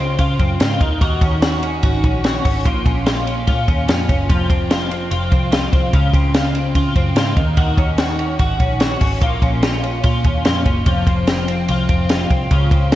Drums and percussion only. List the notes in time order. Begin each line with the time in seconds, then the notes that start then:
0.19 kick, ride
0.39 kick, ride
0.60 snare, ride
0.81 kick, ride
1.01 kick, ride
1.21 kick, ride
1.42 snare, ride
1.63 ride
1.83 kick, ride
2.04 kick, ride
2.24 snare, ride
2.45 kick, open hi-hat, ride
2.65 kick, hi-hat pedal, ride
2.86 kick, ride
3.06 snare, ride
3.27 ride
3.47 kick, ride
3.68 kick, ride
3.88 snare, ride
4.09 kick, ride
4.29 kick, ride
4.50 kick, ride
4.71 snare, ride
4.91 ride
5.11 ride
5.32 kick, ride
5.52 snare, ride
5.73 kick, ride
5.93 kick, ride
6.13 kick, ride
6.34 snare, ride
6.55 ride
6.75 kick, ride
6.96 kick, ride
7.16 snare, ride
7.37 kick, ride
7.57 kick, ride
7.77 kick, ride
7.98 snare, ride
8.19 ride
8.39 kick, ride
8.60 kick, ride
8.80 snare, ride
9.01 kick, open hi-hat, ride
9.21 kick, hi-hat pedal, ride
9.42 kick, ride
9.63 snare, ride
9.83 ride
10.04 kick, ride
10.24 kick, ride
10.45 snare, ride
10.66 kick, ride
10.86 kick, ride
11.07 kick, ride
11.27 snare, ride
11.48 ride
11.68 ride
11.89 kick, ride
12.09 snare, ride
12.30 kick, ride
12.51 kick, ride
12.71 kick, ride
12.92 snare, ride